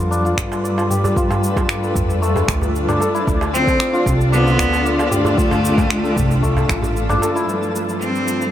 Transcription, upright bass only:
Already playing: F2
0.38 G2
1.96 F2
2.48 D2
3.27 D2
4.06 C2
4.59 D2
6.17 C2
6.69 A1

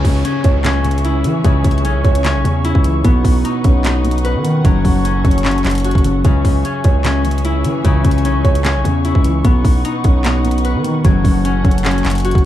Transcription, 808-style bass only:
0.05 C#2
0.45 C#2
1.24 E3
1.44 C#2
1.65 C#2
1.84 B1
1.95 C#2
2.05 C#2
2.35 B1
2.45 E2
2.75 C#2
3.05 B1
3.25 B1
3.65 B1
4.35 D#3
4.65 F#1
4.85 F#1
5.25 F#1
5.65 F#1
5.95 F#1
6.25 C#2
6.45 C#2
6.85 C#2
7.65 E3
7.85 C#2
8.05 C#2
8.25 B1
8.35 C#2
8.45 C#2
8.75 B1
8.85 E2
9.15 C#2
9.45 B1
9.65 B1
10.05 B1
10.75 D#3
11.05 F#1
11.25 F#1
11.65 F#1
12.05 F#1
12.35 F#1

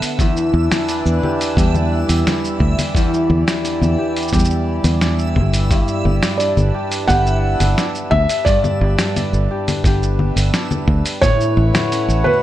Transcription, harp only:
Already playing: D3 A3 B3 F#4
0.20 E2
0.89 D4
1.24 G4
1.57 G3 D4 G4
2.27 D4
2.96 E2
3.64 D4
3.98 G4
4.33 G3 D4 G4
5.02 D4
5.70 G2
6.40 D4
6.74 G4
7.09 B3 D4 G4
7.78 D4
8.47 G2
9.16 D4
9.51 G4
9.85 B3 D4 G4
10.54 D4
11.23 A2
11.92 C#4
12.26 F#4

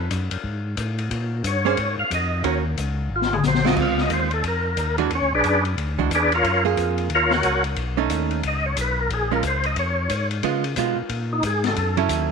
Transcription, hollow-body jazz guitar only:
1.65 A#3 C#4 G#4 C5
2.44 D#3 C#4 F#4 A#4
3.65 G#3 C4 F4
3.78 G#3 C4 F4
4.98 E3 G#3 D4 F#4
5.99 E3 G#3 D4 F#4
6.65 A#3 F4 G#4
7.97 A3 C#4 D#4
9.31 G#3 C#4 F4
10.44 G#3 B3 F4
10.78 G#3 B3 F4
11.97 F#3 C#4 E4 A4

